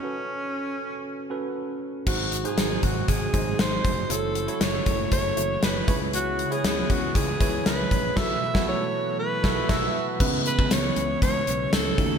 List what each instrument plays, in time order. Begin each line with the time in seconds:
Already playing: tine electric piano C#4 F#4 A4 C#5, alto saxophone C#4
0.03 tine electric piano C#4 F#4 A4 B4
1.30 tine electric piano C#4 F#4 A4 B4
2.06 fretless electric bass G#1, tine electric piano G#2 D#4 F#4 G#4 C5, string machine C3 D#3 F#3 G#3 D#4, alto saxophone F#4, kick, crash
2.32 closed hi-hat
2.44 tine electric piano D#4 F#4 G#4 C5, alto saxophone G#4, closed hi-hat
2.58 fretless electric bass G#1, snare, closed hi-hat
2.83 fretless electric bass G#1, alto saxophone F#4, kick, closed hi-hat
3.08 fretless electric bass G#1, alto saxophone G#4, kick, closed hi-hat
3.33 fretless electric bass G#1, tine electric piano D#4 F#4 G#4 C5, kick, closed hi-hat
3.59 fretless electric bass G#1, alto saxophone C5, snare, closed hi-hat
3.85 fretless electric bass F1, kick, closed hi-hat
4.09 fretless electric bass F#1, string machine C#3 E3 A3 E4, tine electric piano E4 F#4 A4 C#5, alto saxophone A4, closed hi-hat
4.35 closed hi-hat
4.48 tine electric piano E4 F#4 A4 C#5, closed hi-hat
4.61 fretless electric bass F#1, alto saxophone C#5, snare, closed hi-hat
4.86 fretless electric bass F#1, kick, closed hi-hat
5.12 fretless electric bass F#1, alto saxophone C#5, kick, closed hi-hat
5.36 fretless electric bass F#1, tine electric piano E4 F#4 A4 C#5, closed hi-hat
5.63 fretless electric bass F#1, alto saxophone B4, snare, closed hi-hat
5.87 fretless electric bass C#2, tine electric piano C#3 E4 G#4 B4 C#5, string machine G#3 B3 E4, kick, closed hi-hat
6.13 alto saxophone F#4, closed hi-hat
6.39 closed hi-hat
6.51 tine electric piano E4 G#4 B4 C#5, alto saxophone G#4, closed hi-hat
6.64 fretless electric bass C#2, snare, closed hi-hat
6.90 fretless electric bass C#2, alto saxophone F#4, kick, closed hi-hat
7.15 fretless electric bass C#2, alto saxophone G#4, kick, closed hi-hat
7.40 fretless electric bass C#2, tine electric piano E4 G#4 B4 C#5, kick, closed hi-hat
7.66 fretless electric bass C#2, alto saxophone B4, snare, closed hi-hat
7.91 fretless electric bass A#1, kick, closed hi-hat
8.16 fretless electric bass B1, tine electric piano B2 E4 F#4 A4 B4, string machine F#3 A3 F#4, alto saxophone E5, kick, snare, crash
8.54 fretless electric bass B1, tine electric piano E4 F#4 A4, kick, snare
8.68 alto saxophone C#5
9.19 alto saxophone B4
9.43 fretless electric bass B1, tine electric piano E4 F#4 A4 B4, kick, snare
9.68 fretless electric bass B1, tine electric piano E4 F#4 A4 B4, alto saxophone E5, kick, snare, crash
10.19 fretless electric bass C#2, tine electric piano C#3 B3 C#4 D#4 G#4 B4, string machine C#3 E3 G#3 B3 E4, kick, crash
10.26 tine electric piano E4
10.46 alto saxophone B4, closed hi-hat
10.59 fretless electric bass C#2, kick
10.71 fretless electric bass C#2, alto saxophone C#5, snare, closed hi-hat, tambourine
10.96 fretless electric bass C#2, closed hi-hat
11.22 fretless electric bass C#2, alto saxophone C#5, kick, closed hi-hat
11.47 fretless electric bass B1, closed hi-hat
11.73 fretless electric bass C#2, alto saxophone A4, snare, closed hi-hat, tambourine
11.97 fretless electric bass D#2, tine electric piano D#3 A3 C#4 D#4 F#4 A4, string machine F#3 A3 D#4 F#4, kick, closed hi-hat